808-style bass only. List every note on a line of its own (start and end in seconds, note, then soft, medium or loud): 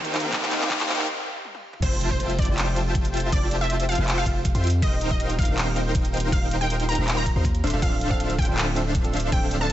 1.82 2.46 F1 loud
2.48 3.31 F1 medium
3.32 3.96 F1 medium
3.98 4.24 F1 loud
4.26 4.53 F1 medium
4.55 4.84 F2 loud
4.82 5.46 D#1 loud
5.48 6.31 D#1 loud
6.32 6.96 D#1 medium
6.98 7.34 D#1 loud
7.36 7.62 D#2 loud
7.64 7.71 D1 loud
7.73 7.81 D1 loud
7.82 8.46 D1 medium
8.48 9.31 D1 loud
9.32 9.72 D1 loud